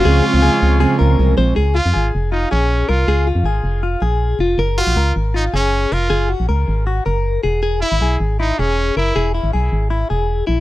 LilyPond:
<<
  \new Staff \with { instrumentName = "Analog synth pad" } { \time 4/4 \key des \major \tempo 4 = 158 <c' aes'' des'''>1 | r1 | r1 | r1 |
r1 | r1 | r1 | }
  \new Staff \with { instrumentName = "Violin section" } { \time 4/4 \key des \major f''2. r4 | r1 | r1 | r1 |
r1 | r1 | r1 | }
  \new Staff \with { instrumentName = "Clean electric guitar" } { \time 4/4 \key des \major aes'8 f'8 aes'4 aes'8 bes'4 c''8 | aes'8 f'8 aes'4 f'8 aes'4 bes'8 | aes'8 f'8 aes'4 f'8 aes'4 f'8 | bes'8 ges'8 bes'4 f'8 aes'4 bes'8 |
aes'8 ges'8 bes'4 ges'8 bes'4 gis'8 | gis'8 e'8 gis'4 e'8 gis'4 bes'8 | gis'8 e'8 gis'4 e'8 gis'4 e'8 | }
  \new Staff \with { instrumentName = "Trumpet" } { \time 4/4 \key des \major f'2. r4 | r8 f'4 r8 ees'8 des'4 f'8~ | f'8 r2. r8 | r8 f'4 r8 ees'8 des'4 f'8~ |
f'8 r2. r8 | r8 e'4 r8 ees'8 des'4 e'8~ | e'8 r2. r8 | }
  \new Staff \with { instrumentName = "Steel-string acoustic guitar" } { \clef bass \time 4/4 \key des \major <des f aes c'>4 <des f aes c'>4 <des f aes c'>4 <des f aes c'>8 <f aes c'>8 | r1 | r1 | r1 |
r1 | r1 | r1 | }
  \new Staff \with { instrumentName = "FM bass" } { \clef bass \time 4/4 \key des \major des,8 r16 des,8 r16 des,8. r16 des,8 c,8 bes,,8 | des,8. f,16 aes,,8 f,,4 bes,,4 c,8 | des,8. f,16 aes,,8 f,,4 bes,,4 f,,8 | ges,,8. bes,,16 des,8 aes,,4 ges,,4 f,,8 |
ges,,8. bes,,16 des,8 aes,,4 ges,,4 e,,8~ | e,,8. gis,,16 b,,8 gis,,4 e,,4 ges,,8 | e,,8. gis,,16 b,,8 gis,,4 e,,4 bes,,8 | }
>>